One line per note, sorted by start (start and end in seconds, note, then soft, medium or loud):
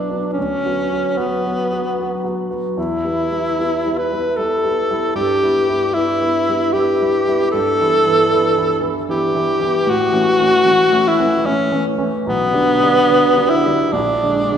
0.00 0.10 F#3 soft
0.00 0.10 B3 soft
0.00 0.10 D4 soft
0.00 0.33 D4 soft
0.10 0.34 F#3 soft
0.10 0.34 B3 soft
0.10 0.34 D4 soft
0.34 1.20 C#4 medium
0.38 0.63 D2 soft
0.65 0.89 F#3 soft
0.65 0.88 B3 soft
0.65 0.89 F#4 soft
0.92 1.15 F#3 soft
0.92 1.16 B3 soft
0.92 1.16 F#4 soft
1.18 1.42 F#3 soft
1.18 2.37 B3 medium
1.18 1.43 B3 soft
1.18 1.43 F#4 soft
1.46 1.69 F#3 soft
1.46 1.69 B3 soft
1.46 1.69 F#4 soft
1.72 1.95 F#3 soft
1.72 1.95 B3 soft
1.72 1.96 F#4 soft
1.99 2.22 F#3 soft
1.99 2.22 B3 soft
1.99 2.22 F#4 soft
2.24 2.48 F#3 soft
2.24 2.48 B3 soft
2.24 2.48 F#4 soft
2.50 2.74 F#3 soft
2.50 2.74 B3 soft
2.50 2.75 F#4 soft
2.77 3.03 E2 soft
2.77 4.00 E4 medium
3.04 3.29 G3 soft
3.04 3.29 B3 soft
3.04 3.29 E4 soft
3.32 3.56 G3 soft
3.32 3.56 B3 soft
3.32 3.56 E4 soft
3.59 3.83 G3 soft
3.59 3.82 B3 soft
3.59 3.83 E4 soft
3.86 4.09 G3 soft
3.86 4.10 B3 soft
3.86 4.10 E4 soft
3.98 4.38 B4 medium
4.12 4.35 G3 soft
4.12 4.35 B3 soft
4.12 4.36 E4 soft
4.37 4.61 G3 soft
4.37 4.61 B3 soft
4.37 4.61 E4 soft
4.37 5.15 A4 medium
4.64 4.87 G3 soft
4.64 4.87 B3 soft
4.64 4.88 E4 soft
4.91 5.13 G3 soft
4.91 5.13 B3 soft
4.91 5.13 E4 soft
5.15 5.40 G2 soft
5.15 5.95 G4 medium
5.42 5.65 G3 soft
5.42 5.66 B3 soft
5.42 5.66 E4 soft
5.68 5.92 G3 soft
5.68 5.92 B3 soft
5.68 5.92 E4 soft
5.94 6.19 G3 soft
5.94 6.19 B3 soft
5.94 6.74 E4 medium
5.94 6.19 E4 soft
6.21 6.45 G3 soft
6.21 6.45 B3 soft
6.21 6.45 E4 soft
6.49 6.72 G3 soft
6.49 6.72 B3 soft
6.49 6.72 E4 soft
6.73 6.98 G3 soft
6.73 6.98 B3 soft
6.73 6.98 E4 soft
6.73 7.51 G4 medium
7.01 7.25 G3 soft
7.01 7.25 B3 soft
7.01 7.25 E4 soft
7.28 7.51 G3 soft
7.28 7.52 B3 soft
7.28 7.52 E4 soft
7.51 7.79 G2 soft
7.51 8.79 A4 medium
7.81 8.04 E3 soft
7.81 8.04 B3 soft
7.81 8.04 E4 soft
8.06 8.29 E3 soft
8.06 8.30 B3 soft
8.06 8.29 E4 soft
8.31 8.55 E3 soft
8.31 8.55 B3 soft
8.31 8.55 E4 soft
8.57 8.79 E3 soft
8.57 8.80 B3 soft
8.57 8.81 E4 soft
8.81 9.06 E3 soft
8.81 9.06 B3 soft
8.81 9.06 E4 soft
9.08 9.33 E3 soft
9.08 9.33 B3 soft
9.08 9.33 E4 soft
9.08 9.91 G4 medium
9.34 9.58 E3 soft
9.34 9.59 B3 soft
9.34 9.59 E4 soft
9.60 9.85 E3 soft
9.60 9.85 B3 soft
9.60 9.85 E4 soft
9.87 10.13 A2 medium
9.87 11.09 F#4 medium
10.12 10.37 E3 soft
10.12 10.38 A3 soft
10.12 10.38 C#4 soft
10.38 10.63 E3 soft
10.38 10.64 A3 soft
10.38 10.64 C#4 soft
10.65 10.90 E3 soft
10.65 10.90 A3 soft
10.65 10.90 C#4 soft
10.92 11.16 E3 soft
10.92 11.16 A3 soft
10.92 11.17 C#4 soft
11.08 11.48 E4 medium
11.19 11.42 E3 soft
11.19 11.43 A3 soft
11.19 11.44 C#4 soft
11.44 11.69 E3 soft
11.44 11.69 A3 soft
11.44 11.70 C#4 soft
11.44 11.86 C#4 medium
11.72 11.96 E3 soft
11.72 11.96 A3 soft
11.72 11.97 C#4 soft
11.98 12.23 E3 soft
11.98 12.23 A3 soft
11.98 12.23 C#4 soft
12.27 12.53 B1 soft
12.27 13.51 B3 medium
12.52 12.77 D3 soft
12.52 12.78 G3 soft
12.52 12.78 D4 soft
12.82 13.06 D3 soft
12.82 13.07 G3 soft
12.82 13.07 D4 soft
13.08 13.33 D3 soft
13.08 13.33 G3 soft
13.08 13.34 D4 soft
13.36 13.61 D3 soft
13.36 13.62 G3 soft
13.36 13.62 D4 soft
13.50 13.94 E4 medium
13.66 13.91 D3 soft
13.66 13.91 G3 soft
13.66 13.91 D4 soft
13.92 14.21 A#1 medium
13.92 14.58 D4 medium
14.23 14.50 D3 soft
14.23 14.50 G#3 soft
14.23 14.50 D4 soft
14.51 14.58 D3 soft
14.51 14.58 G#3 soft
14.51 14.58 D4 soft